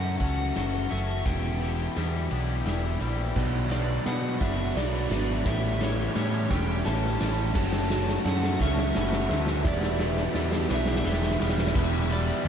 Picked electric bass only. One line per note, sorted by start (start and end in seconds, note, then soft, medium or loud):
0.00 0.16 F#2 medium
0.21 0.51 C#2 medium
0.56 0.86 F#1 medium
0.92 1.22 F#1 medium
1.26 1.87 E1 medium
1.97 2.27 E2 medium
2.32 2.62 B1 medium
2.66 2.96 E1 medium
3.01 3.31 A#1 medium
3.36 3.97 B1 medium
4.06 4.37 B2 medium
4.42 4.72 F#1 medium
4.76 5.06 B1 medium
5.10 5.41 G#1 medium
5.46 6.07 A1 medium
6.16 6.46 A2 medium
6.51 6.82 E1 medium
6.86 7.17 A1 loud
7.21 7.52 A1 medium
7.56 8.17 F#1 medium
8.25 8.56 F#2 medium
8.61 8.91 C#2 loud
8.96 9.27 F#1 medium
9.31 9.66 D2 loud
9.65 10.26 E1 medium
10.35 10.66 E2 medium
10.71 11.01 B1 loud
11.05 11.36 E1 medium
11.41 11.71 E1 medium
11.76 12.31 E1 medium
12.45 12.48 E1 medium